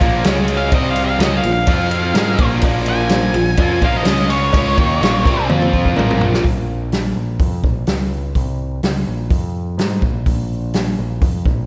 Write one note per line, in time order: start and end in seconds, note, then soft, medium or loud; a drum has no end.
0.00 0.23 A#1 loud
0.00 0.24 A#2 medium
0.00 0.25 F3 medium
0.00 0.25 A#3 medium
0.00 0.16 C#4 medium
0.00 0.16 F4 medium
0.00 0.16 A#4 medium
0.00 kick loud
0.00 ride medium
0.24 0.70 C#2 medium
0.24 0.72 C#3 medium
0.24 0.72 G#3 medium
0.24 0.63 C#4 medium
0.24 0.73 C#4 medium
0.24 0.63 G#4 medium
0.24 0.63 C#5 medium
0.24 snare loud
0.24 ride medium
0.24 cowbell medium
0.48 ride medium
0.57 0.72 F5 medium
0.72 1.17 C2 medium
0.72 1.19 C3 medium
0.72 1.20 G3 loud
0.72 1.11 C4 medium
0.72 1.20 C4 loud
0.72 1.11 G4 medium
0.72 1.11 C5 medium
0.72 0.89 D#5 loud
0.72 kick loud
0.72 ride medium
0.72 cowbell loud
0.91 1.04 F5 medium
0.96 ride medium
1.05 1.20 F5 loud
1.19 1.41 C#2 loud
1.19 1.44 C#3 medium
1.19 1.44 G#3 loud
1.19 1.57 C#4 medium
1.19 1.44 C#4 loud
1.19 1.58 F4 medium
1.19 1.58 A#4 medium
1.19 1.36 D#5 medium
1.19 snare loud
1.19 ride medium
1.19 cowbell medium
1.37 1.51 F5 medium
1.43 1.66 A#1 medium
1.43 1.63 A#2 medium
1.43 1.63 F3 medium
1.43 ride medium
1.53 2.45 F5 loud
1.67 2.12 F2 medium
1.67 2.15 F3 loud
1.67 2.06 C4 medium
1.67 2.15 C4 medium
1.67 2.06 F4 medium
1.67 2.15 F4 loud
1.67 2.06 C5 medium
1.67 kick loud
1.67 ride medium
1.67 cowbell loud
1.91 ride medium
2.14 2.37 G#2 medium
2.14 2.39 G#3 medium
2.14 2.53 C#4 medium
2.14 2.39 D#4 medium
2.14 2.53 F4 medium
2.14 2.39 G#4 loud
2.14 2.53 A#4 medium
2.14 snare loud
2.14 ride loud
2.14 cowbell medium
2.39 2.61 A#1 medium
2.39 2.62 A#2 loud
2.39 2.63 F3 loud
2.39 2.63 A#3 medium
2.39 kick loud
2.39 ride medium
2.61 3.30 A#1 medium
2.61 3.34 A#2 loud
2.61 3.34 F3 loud
2.61 3.34 A#3 loud
2.61 3.00 C#4 medium
2.61 3.00 F4 medium
2.61 3.01 A#4 medium
2.61 kick loud
2.61 ride loud
2.61 cowbell loud
2.86 3.80 G#5 loud
2.86 ride medium
3.09 3.48 C#4 medium
3.09 3.48 F4 medium
3.09 3.49 C5 medium
3.09 snare loud
3.09 ride medium
3.09 cowbell medium
3.33 3.56 A#1 medium
3.33 3.54 A#2 medium
3.33 3.54 F3 medium
3.33 ride medium
3.57 3.80 F2 loud
3.57 3.82 F3 loud
3.57 3.82 C4 loud
3.57 3.96 C#4 medium
3.57 3.96 F4 medium
3.57 3.82 F4 loud
3.57 3.96 A#4 medium
3.57 kick loud
3.57 ride loud
3.57 cowbell medium
3.82 4.04 A#1 medium
3.82 4.05 A#2 medium
3.82 4.06 F3 medium
3.82 4.06 A#3 loud
3.82 3.97 F5 loud
3.82 kick loud
3.82 ride medium
3.97 4.30 D#5 medium
4.05 4.49 C#2 loud
4.05 4.52 C#3 medium
4.05 4.53 G#3 loud
4.05 4.43 C#4 medium
4.05 4.53 C#4 medium
4.05 4.44 G#4 medium
4.05 4.44 C#5 medium
4.05 snare loud
4.05 ride loud
4.05 cowbell medium
4.30 5.45 C#5 loud
4.30 ride medium
4.52 4.75 C#2 medium
4.52 4.76 C#3 loud
4.52 4.77 G#3 loud
4.52 4.91 C#4 medium
4.52 4.77 C#4 loud
4.52 4.91 F4 medium
4.52 4.91 A#4 medium
4.52 kick loud
4.52 ride medium
4.52 cowbell medium
4.78 5.00 D#2 medium
4.78 5.01 D#3 medium
4.78 5.01 A#3 loud
4.78 5.01 D#4 loud
4.78 kick loud
4.78 ride medium
5.01 5.23 A#1 loud
5.01 5.24 A#2 loud
5.01 5.25 F3 loud
5.01 5.25 A#3 loud
5.01 5.39 C#4 medium
5.01 5.39 F4 medium
5.01 5.39 A#4 loud
5.01 snare loud
5.01 ride medium
5.01 cowbell medium
5.25 5.47 C2 medium
5.25 5.49 C3 medium
5.25 5.49 G3 medium
5.25 5.48 C4 loud
5.25 kick loud
5.25 ride medium
5.49 5.94 F2 loud
5.49 5.96 F3 medium
5.49 5.87 C4 medium
5.49 5.96 C4 loud
5.49 5.87 F4 medium
5.49 5.96 F4 loud
5.49 5.87 C5 loud
5.49 high tom medium
5.49 cowbell loud
5.62 high tom medium
5.73 kick medium
5.85 kick medium
5.95 6.41 A#1 medium
5.95 6.43 A#2 medium
5.95 6.44 F3 loud
5.95 6.44 A#3 loud
5.95 6.34 C#4 medium
5.95 6.34 F4 medium
5.95 6.35 A#4 loud
5.95 mid tom medium
5.95 cowbell medium
6.11 mid tom medium
6.21 floor tom loud
6.34 snare medium
6.44 7.12 A#1 medium
6.44 kick loud
6.44 open hi-hat soft
6.92 snare medium
6.92 open hi-hat soft
7.16 7.38 A#1 medium
7.40 7.62 F2 medium
7.40 kick medium
7.40 open hi-hat soft
7.64 7.86 A#1 medium
7.64 kick loud
7.87 8.32 C#2 medium
7.87 snare medium
7.87 open hi-hat soft
8.35 8.80 C2 medium
8.35 kick medium
8.35 open hi-hat soft
8.83 9.06 C#2 medium
8.83 snare loud
8.83 open hi-hat soft
9.07 9.30 A#1 medium
9.30 9.75 F2 medium
9.30 kick medium
9.30 open hi-hat soft
9.77 10.01 G#2 medium
9.77 snare loud
9.77 open hi-hat medium
10.02 10.25 A#1 medium
10.02 kick medium
10.26 10.95 A#1 medium
10.26 kick medium
10.26 open hi-hat soft
10.74 snare medium
10.74 open hi-hat soft
10.99 11.21 A#1 medium
11.22 11.45 F2 medium
11.22 kick loud
11.22 open hi-hat soft
11.46 11.66 A#1 medium
11.46 kick loud